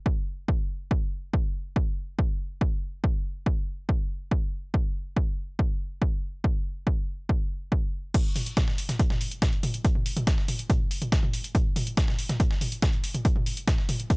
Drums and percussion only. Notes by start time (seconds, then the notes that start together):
0.06 kick
0.48 kick
0.91 kick
1.33 kick
1.76 kick
2.19 kick
2.61 kick
3.04 kick
3.46 kick
3.89 kick
4.31 kick
4.74 kick
5.17 kick
5.59 kick
6.02 kick
6.44 kick
6.87 kick
7.29 kick
7.72 kick
8.14 kick, closed hi-hat, crash
8.36 closed hi-hat, mid tom, open hi-hat
8.46 closed hi-hat
8.57 kick, snare, closed hi-hat, mid tom
8.68 snare
8.78 closed hi-hat, open hi-hat
8.89 snare, closed hi-hat, mid tom
8.99 kick, closed hi-hat
9.10 snare, mid tom
9.21 closed hi-hat, open hi-hat
9.31 closed hi-hat
9.42 kick, snare, closed hi-hat, mid tom
9.53 closed hi-hat
9.63 closed hi-hat, mid tom, open hi-hat
9.74 closed hi-hat
9.85 kick, closed hi-hat
9.95 mid tom
10.06 closed hi-hat, open hi-hat
10.17 closed hi-hat, mid tom
10.27 kick, snare, closed hi-hat
10.38 snare
10.48 closed hi-hat, mid tom, open hi-hat
10.59 closed hi-hat
10.70 kick, closed hi-hat, mid tom
10.91 closed hi-hat, open hi-hat
11.02 closed hi-hat, mid tom
11.12 kick, snare, closed hi-hat
11.23 mid tom
11.33 closed hi-hat, open hi-hat
11.44 closed hi-hat
11.55 kick, closed hi-hat, mid tom
11.76 closed hi-hat, mid tom, open hi-hat
11.87 closed hi-hat
11.97 kick, snare, closed hi-hat
12.08 snare, mid tom
12.19 closed hi-hat, open hi-hat
12.29 snare, closed hi-hat, mid tom
12.40 kick, closed hi-hat
12.51 snare
12.61 closed hi-hat, mid tom, open hi-hat
12.72 closed hi-hat
12.82 kick, snare, closed hi-hat, mid tom
12.93 closed hi-hat
13.04 closed hi-hat, open hi-hat
13.14 closed hi-hat, mid tom
13.25 kick, closed hi-hat
13.36 mid tom
13.46 closed hi-hat, open hi-hat
13.57 closed hi-hat
13.68 kick, snare, closed hi-hat, mid tom
13.78 snare
13.89 closed hi-hat, mid tom, open hi-hat
14.00 closed hi-hat
14.10 kick, closed hi-hat